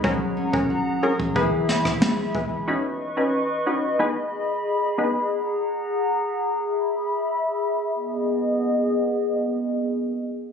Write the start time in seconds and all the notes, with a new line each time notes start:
Already playing: G#2 G#3 B3 D#4
0.04 F#3 C#4 F#4 G#4 A#4 F#5 A#5, kick
0.37 C#4
0.53 C#4 F#4 G#4 A#4, kick
0.70 F#4
1.03 C#4 F#4 G#4 A#4
1.20 kick
1.35 E3 B3 E4 G#4 B4 E5 B5, kick
1.69 E4, snare
1.85 kick, cross-stick
2.02 G#3, snare
2.35 B3 E4 G#4 B4, kick
2.68 C#4 D#4 F#4 B4 D#5 C#6
3.17 C#4 D#4 F#4 B4
3.66 C#4 D#4 F#4 B4
3.99 B3 D#4 G#4 B4 B5
4.98 B3 D#4 G#4 B4
5.31 F#5 A#5
6.63 E5 B5
7.95 B3 G#4 D#5